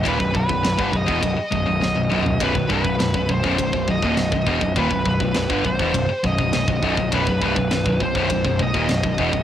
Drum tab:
RD |b---b---b-------|b---b---b---b---|b---b---b---b---|b---b---b---b---|
SD |----o-------o---|----o-------o---|----o-------o---|----o-------o---|
T2 |--------------o-|----------------|----------------|----------------|
FT |---------------o|----------------|----------------|----------------|
BD |oooo-oooo-o-----|oooo-ooooooo-ooo|oooo-oooo-oo-ooo|oooo-ooooooo-ooo|